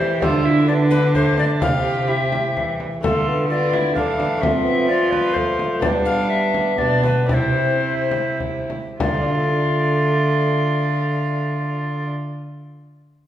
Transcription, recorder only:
Already playing: C5
0.22 A4
0.68 D5
0.90 B4
1.14 C5
1.39 D5
1.62 F5
2.08 E5
3.03 A4
3.50 D5
3.96 F5
4.41 E5
4.89 D5
5.11 B4
5.34 C5
5.81 D5
6.05 F5
6.30 E5
6.78 D5
7.04 B4
7.30 C5 D5
9.00 D5

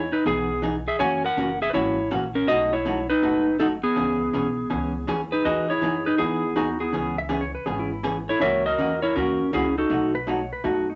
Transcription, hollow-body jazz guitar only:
0.26 E3 B3 D#4 G#4
0.62 E3 B3 D#4 G#4
1.00 C#3 E3 A#3 C#4 F#4
1.37 C#3 E3 A#3 C#4 F#4
1.73 C#3 E3 A#3 C#4 F#4
2.11 C#3 E3 A#3 C#4 F#4
2.49 B2 F#3 A3 D#4 F#4
2.85 B2 F#3 A3 D#4 F#4
3.22 B2 F#3 A3 D#4 F#4
3.59 B2 F#3 A3 D#4 F#4
3.96 C#3 E3 B3 C#4 G#4
4.33 C#3 E3 B3 C#4 G#4
4.70 C#3 E3 B3 C#4 G#4
5.07 C#3 E3 B3 C#4 G#4
5.45 E3 B3 D#4 G#4
5.82 E3 B3 D#4 G#4
6.19 E3 B3 D#4 G#4
6.56 E3 B3 D#4 G#4
6.92 C#3 E3 B3 C#4 G#4
7.29 C#3 E3 B3 C#4 G#4
7.66 C#3 E3 B3 C#4 G#4
8.03 C#3 E3 B3 C#4 G#4
8.39 C#3 E3 A#3 C#4 F#4
8.78 C#3 E3 A#3 C#4 F#4
9.16 C#3 E3 A#3 C#4 F#4
9.53 C#3 E3 A#3 C#4 F#4
9.90 B2 F#3 A3 D#4 F#4
10.27 B2 F#3 A3 D#4 F#4
10.64 B2 F#3 A3 D#4 F#4

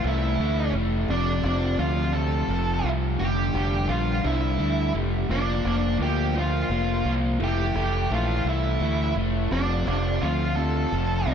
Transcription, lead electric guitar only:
0.07 E4
1.11 D4
1.79 F4
2.13 A4
3.19 G4
3.89 F4
4.26 E4
5.31 D4
6.03 G4
6.39 F4
7.44 G4
8.14 F4
8.49 E4
9.52 D4
10.21 F4
10.56 A4

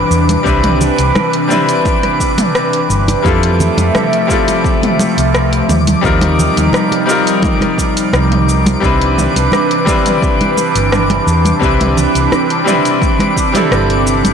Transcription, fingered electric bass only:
0.11 E2
0.46 C2
0.99 C2
2.90 G1
3.25 F2
3.78 F2
5.18 C2
5.69 D#2
6.04 D#2
6.57 D#2
8.13 C2
8.83 C2
9.36 C2
10.75 G1
11.27 E2
11.62 C2
12.15 C2
13.71 G1

